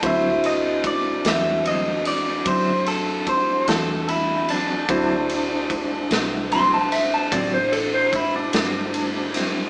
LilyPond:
<<
  \new Staff \with { instrumentName = "Clean electric guitar" } { \time 12/8 \key d \major \tempo 4. = 49 e''8 dis''8 d''8 e''8 dis''8 d''8 c''8 a'8 c''8 a'8 e'8 d'8~ | d'4. r8 c'''16 a''16 e''16 a''16 d''16 c''16 a'16 c''16 e'16 d'16 d'4. | }
  \new Staff \with { instrumentName = "Tine electric piano" } { \time 12/8 \key d \major <e' fis' a' c''>1. | <e' fis' a' c''>1. | }
  \new Staff \with { instrumentName = "Tonewheel organ" } { \time 12/8 \key d \major <c' d' e' fis'>1. | <d' e' fis' c''>1. | }
  \new Staff \with { instrumentName = "Clean electric guitar" } { \time 12/8 \key d \major <d fis c' e'>8 r4 <fis c' e'>8 <d fis c' e'>8 r8 <d fis c' e'>8 r4 <fis c' e'>8 r8 <fis c' e'>8 | <d fis c' e'>8 r4 <fis c' e'>8 <d fis c' e'>8 r8 <d fis c' e'>8 r4 <fis c' e'>8 r8 <fis c' e'>8 | }
  \new Staff \with { instrumentName = "Fingered electric bass" } { \clef bass \time 12/8 \key d \major d,4. e,4. fis,4. e,4. | d,4. b,,4. a,,4. g,,4. | }
  \new DrumStaff \with { instrumentName = "Drums" } \drummode { \time 12/8 <bd cymr>8 cymr8 <bd cymr>8 <cymr sn>8 cymr8 cymr8 <bd cymr>8 cymr8 <bd cymr>8 <cymr sn>8 cymr8 cymr8 | <bd cymr>8 cymr8 <bd cymr>8 <cymr sn>8 cymr8 cymr8 <bd cymr>8 cymr8 <bd cymr>8 <cymr sn>8 cymr8 <cymr sn>8 | }
>>